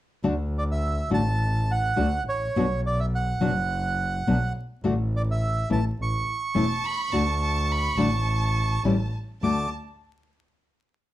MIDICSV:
0, 0, Header, 1, 5, 480
1, 0, Start_track
1, 0, Key_signature, 2, "major"
1, 0, Tempo, 573066
1, 209, Time_signature, 4, 2, 24, 8
1, 9329, End_track
2, 0, Start_track
2, 0, Title_t, "Violin section"
2, 0, Program_c, 0, 48
2, 5490, Note_on_c, 0, 81, 81
2, 5713, Note_off_c, 0, 81, 0
2, 5729, Note_on_c, 0, 83, 92
2, 5969, Note_off_c, 0, 83, 0
2, 5971, Note_on_c, 0, 81, 82
2, 6204, Note_off_c, 0, 81, 0
2, 6214, Note_on_c, 0, 81, 81
2, 6435, Note_off_c, 0, 81, 0
2, 6462, Note_on_c, 0, 83, 85
2, 6695, Note_off_c, 0, 83, 0
2, 6695, Note_on_c, 0, 81, 77
2, 7654, Note_off_c, 0, 81, 0
2, 7900, Note_on_c, 0, 81, 62
2, 8120, Note_off_c, 0, 81, 0
2, 9329, End_track
3, 0, Start_track
3, 0, Title_t, "Bandoneon"
3, 0, Program_c, 1, 23
3, 490, Note_on_c, 1, 74, 74
3, 535, Note_off_c, 1, 74, 0
3, 601, Note_on_c, 1, 76, 74
3, 923, Note_off_c, 1, 76, 0
3, 953, Note_on_c, 1, 81, 85
3, 1435, Note_on_c, 1, 78, 88
3, 1439, Note_off_c, 1, 81, 0
3, 1874, Note_off_c, 1, 78, 0
3, 1916, Note_on_c, 1, 73, 82
3, 2354, Note_off_c, 1, 73, 0
3, 2400, Note_on_c, 1, 74, 74
3, 2511, Note_on_c, 1, 76, 63
3, 2512, Note_off_c, 1, 74, 0
3, 2562, Note_off_c, 1, 76, 0
3, 2638, Note_on_c, 1, 78, 78
3, 3793, Note_off_c, 1, 78, 0
3, 4327, Note_on_c, 1, 74, 77
3, 4374, Note_off_c, 1, 74, 0
3, 4450, Note_on_c, 1, 76, 77
3, 4767, Note_off_c, 1, 76, 0
3, 4794, Note_on_c, 1, 81, 80
3, 4897, Note_off_c, 1, 81, 0
3, 5045, Note_on_c, 1, 85, 97
3, 7392, Note_off_c, 1, 85, 0
3, 7902, Note_on_c, 1, 86, 75
3, 8121, Note_off_c, 1, 86, 0
3, 9329, End_track
4, 0, Start_track
4, 0, Title_t, "Nylon-string guitar"
4, 0, Program_c, 2, 24
4, 197, Note_on_c, 2, 57, 77
4, 199, Note_on_c, 2, 50, 65
4, 201, Note_on_c, 2, 62, 77
4, 201, Note_on_c, 2, 66, 72
4, 278, Note_off_c, 2, 57, 0
4, 279, Note_off_c, 2, 50, 0
4, 280, Note_off_c, 2, 66, 0
4, 281, Note_off_c, 2, 62, 0
4, 923, Note_on_c, 2, 50, 70
4, 928, Note_on_c, 2, 57, 72
4, 932, Note_on_c, 2, 66, 77
4, 934, Note_on_c, 2, 62, 76
4, 1003, Note_off_c, 2, 50, 0
4, 1005, Note_off_c, 2, 57, 0
4, 1008, Note_off_c, 2, 66, 0
4, 1009, Note_off_c, 2, 62, 0
4, 1643, Note_on_c, 2, 50, 69
4, 1647, Note_on_c, 2, 57, 76
4, 1648, Note_on_c, 2, 66, 71
4, 1650, Note_on_c, 2, 62, 71
4, 1724, Note_off_c, 2, 50, 0
4, 1726, Note_off_c, 2, 57, 0
4, 1727, Note_off_c, 2, 66, 0
4, 1728, Note_off_c, 2, 62, 0
4, 2146, Note_on_c, 2, 47, 70
4, 2146, Note_on_c, 2, 54, 78
4, 2150, Note_on_c, 2, 59, 75
4, 2153, Note_on_c, 2, 62, 70
4, 2155, Note_on_c, 2, 66, 79
4, 2216, Note_off_c, 2, 47, 0
4, 2217, Note_off_c, 2, 54, 0
4, 2218, Note_off_c, 2, 59, 0
4, 2220, Note_off_c, 2, 62, 0
4, 2221, Note_off_c, 2, 66, 0
4, 2852, Note_on_c, 2, 54, 79
4, 2856, Note_on_c, 2, 47, 72
4, 2857, Note_on_c, 2, 59, 74
4, 2858, Note_on_c, 2, 62, 78
4, 2862, Note_on_c, 2, 66, 86
4, 2930, Note_off_c, 2, 54, 0
4, 2931, Note_off_c, 2, 47, 0
4, 2932, Note_off_c, 2, 59, 0
4, 2932, Note_off_c, 2, 62, 0
4, 2935, Note_off_c, 2, 66, 0
4, 3579, Note_on_c, 2, 47, 77
4, 3579, Note_on_c, 2, 59, 78
4, 3580, Note_on_c, 2, 54, 69
4, 3582, Note_on_c, 2, 62, 74
4, 3586, Note_on_c, 2, 66, 77
4, 3652, Note_off_c, 2, 47, 0
4, 3652, Note_off_c, 2, 59, 0
4, 3653, Note_off_c, 2, 54, 0
4, 3654, Note_off_c, 2, 62, 0
4, 3656, Note_off_c, 2, 66, 0
4, 4052, Note_on_c, 2, 50, 69
4, 4053, Note_on_c, 2, 57, 77
4, 4056, Note_on_c, 2, 62, 81
4, 4062, Note_on_c, 2, 66, 78
4, 4128, Note_off_c, 2, 50, 0
4, 4129, Note_off_c, 2, 57, 0
4, 4130, Note_off_c, 2, 62, 0
4, 4133, Note_off_c, 2, 66, 0
4, 4771, Note_on_c, 2, 52, 76
4, 4774, Note_on_c, 2, 57, 75
4, 4776, Note_on_c, 2, 61, 78
4, 4780, Note_on_c, 2, 64, 77
4, 4847, Note_off_c, 2, 52, 0
4, 4848, Note_off_c, 2, 57, 0
4, 4849, Note_off_c, 2, 61, 0
4, 4851, Note_off_c, 2, 64, 0
4, 5484, Note_on_c, 2, 52, 70
4, 5485, Note_on_c, 2, 61, 78
4, 5486, Note_on_c, 2, 57, 79
4, 5496, Note_on_c, 2, 64, 78
4, 5562, Note_off_c, 2, 52, 0
4, 5563, Note_off_c, 2, 57, 0
4, 5563, Note_off_c, 2, 61, 0
4, 5568, Note_off_c, 2, 64, 0
4, 5966, Note_on_c, 2, 50, 71
4, 5969, Note_on_c, 2, 62, 73
4, 5971, Note_on_c, 2, 57, 79
4, 5977, Note_on_c, 2, 66, 80
4, 6043, Note_off_c, 2, 50, 0
4, 6044, Note_off_c, 2, 62, 0
4, 6045, Note_off_c, 2, 57, 0
4, 6048, Note_off_c, 2, 66, 0
4, 6678, Note_on_c, 2, 50, 75
4, 6683, Note_on_c, 2, 57, 74
4, 6687, Note_on_c, 2, 66, 80
4, 6690, Note_on_c, 2, 62, 72
4, 6758, Note_off_c, 2, 50, 0
4, 6761, Note_off_c, 2, 57, 0
4, 6763, Note_off_c, 2, 66, 0
4, 6764, Note_off_c, 2, 62, 0
4, 7411, Note_on_c, 2, 52, 68
4, 7411, Note_on_c, 2, 55, 74
4, 7414, Note_on_c, 2, 64, 83
4, 7417, Note_on_c, 2, 61, 74
4, 7486, Note_off_c, 2, 52, 0
4, 7486, Note_off_c, 2, 55, 0
4, 7487, Note_off_c, 2, 64, 0
4, 7489, Note_off_c, 2, 61, 0
4, 7896, Note_on_c, 2, 50, 68
4, 7897, Note_on_c, 2, 57, 72
4, 7903, Note_on_c, 2, 62, 70
4, 7905, Note_on_c, 2, 66, 73
4, 8086, Note_off_c, 2, 50, 0
4, 8087, Note_off_c, 2, 57, 0
4, 8090, Note_off_c, 2, 62, 0
4, 8091, Note_off_c, 2, 66, 0
4, 9329, End_track
5, 0, Start_track
5, 0, Title_t, "Double bass"
5, 0, Program_c, 3, 43
5, 208, Note_on_c, 3, 38, 86
5, 896, Note_off_c, 3, 38, 0
5, 930, Note_on_c, 3, 33, 88
5, 1618, Note_off_c, 3, 33, 0
5, 1649, Note_on_c, 3, 38, 77
5, 1855, Note_off_c, 3, 38, 0
5, 1894, Note_on_c, 3, 33, 58
5, 2124, Note_off_c, 3, 33, 0
5, 2130, Note_on_c, 3, 35, 87
5, 2817, Note_off_c, 3, 35, 0
5, 2853, Note_on_c, 3, 30, 86
5, 3538, Note_off_c, 3, 30, 0
5, 3576, Note_on_c, 3, 35, 84
5, 3777, Note_off_c, 3, 35, 0
5, 4053, Note_on_c, 3, 33, 85
5, 4737, Note_off_c, 3, 33, 0
5, 4776, Note_on_c, 3, 33, 82
5, 4976, Note_off_c, 3, 33, 0
5, 5016, Note_on_c, 3, 33, 77
5, 5216, Note_off_c, 3, 33, 0
5, 5492, Note_on_c, 3, 28, 76
5, 5693, Note_off_c, 3, 28, 0
5, 5958, Note_on_c, 3, 38, 85
5, 6647, Note_off_c, 3, 38, 0
5, 6677, Note_on_c, 3, 33, 88
5, 7368, Note_off_c, 3, 33, 0
5, 7400, Note_on_c, 3, 33, 84
5, 7608, Note_off_c, 3, 33, 0
5, 7889, Note_on_c, 3, 38, 49
5, 8091, Note_off_c, 3, 38, 0
5, 9329, End_track
0, 0, End_of_file